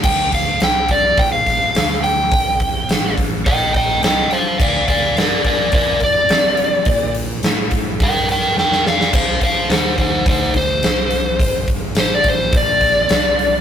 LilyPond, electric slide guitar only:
\new Staff \with { instrumentName = "Electric slide guitar" } { \time 4/4 \key g \minor \tempo 4 = 106 g''8 f''8 g''8 d''8 g''16 f''4~ f''16 g''8~ | g''4. r8 <ees'' g''>8 <ees'' g''>8 <ees'' g''>8 <c'' f''>8 | <d'' f''>8 <d'' f''>8 <bes' d''>8 <bes' d''>8 <bes' d''>8 d''4.~ | d''8 r4. <bes' g''>8 <bes' g''>8 <bes' g''>8 <d'' f''>8 |
<c'' f''>8 <c'' f''>8 <ees' c''>8 <ees' c''>8 <ees' c''>8 c''4.~ | c''8 r8 c''16 d''16 c''8 d''2 | }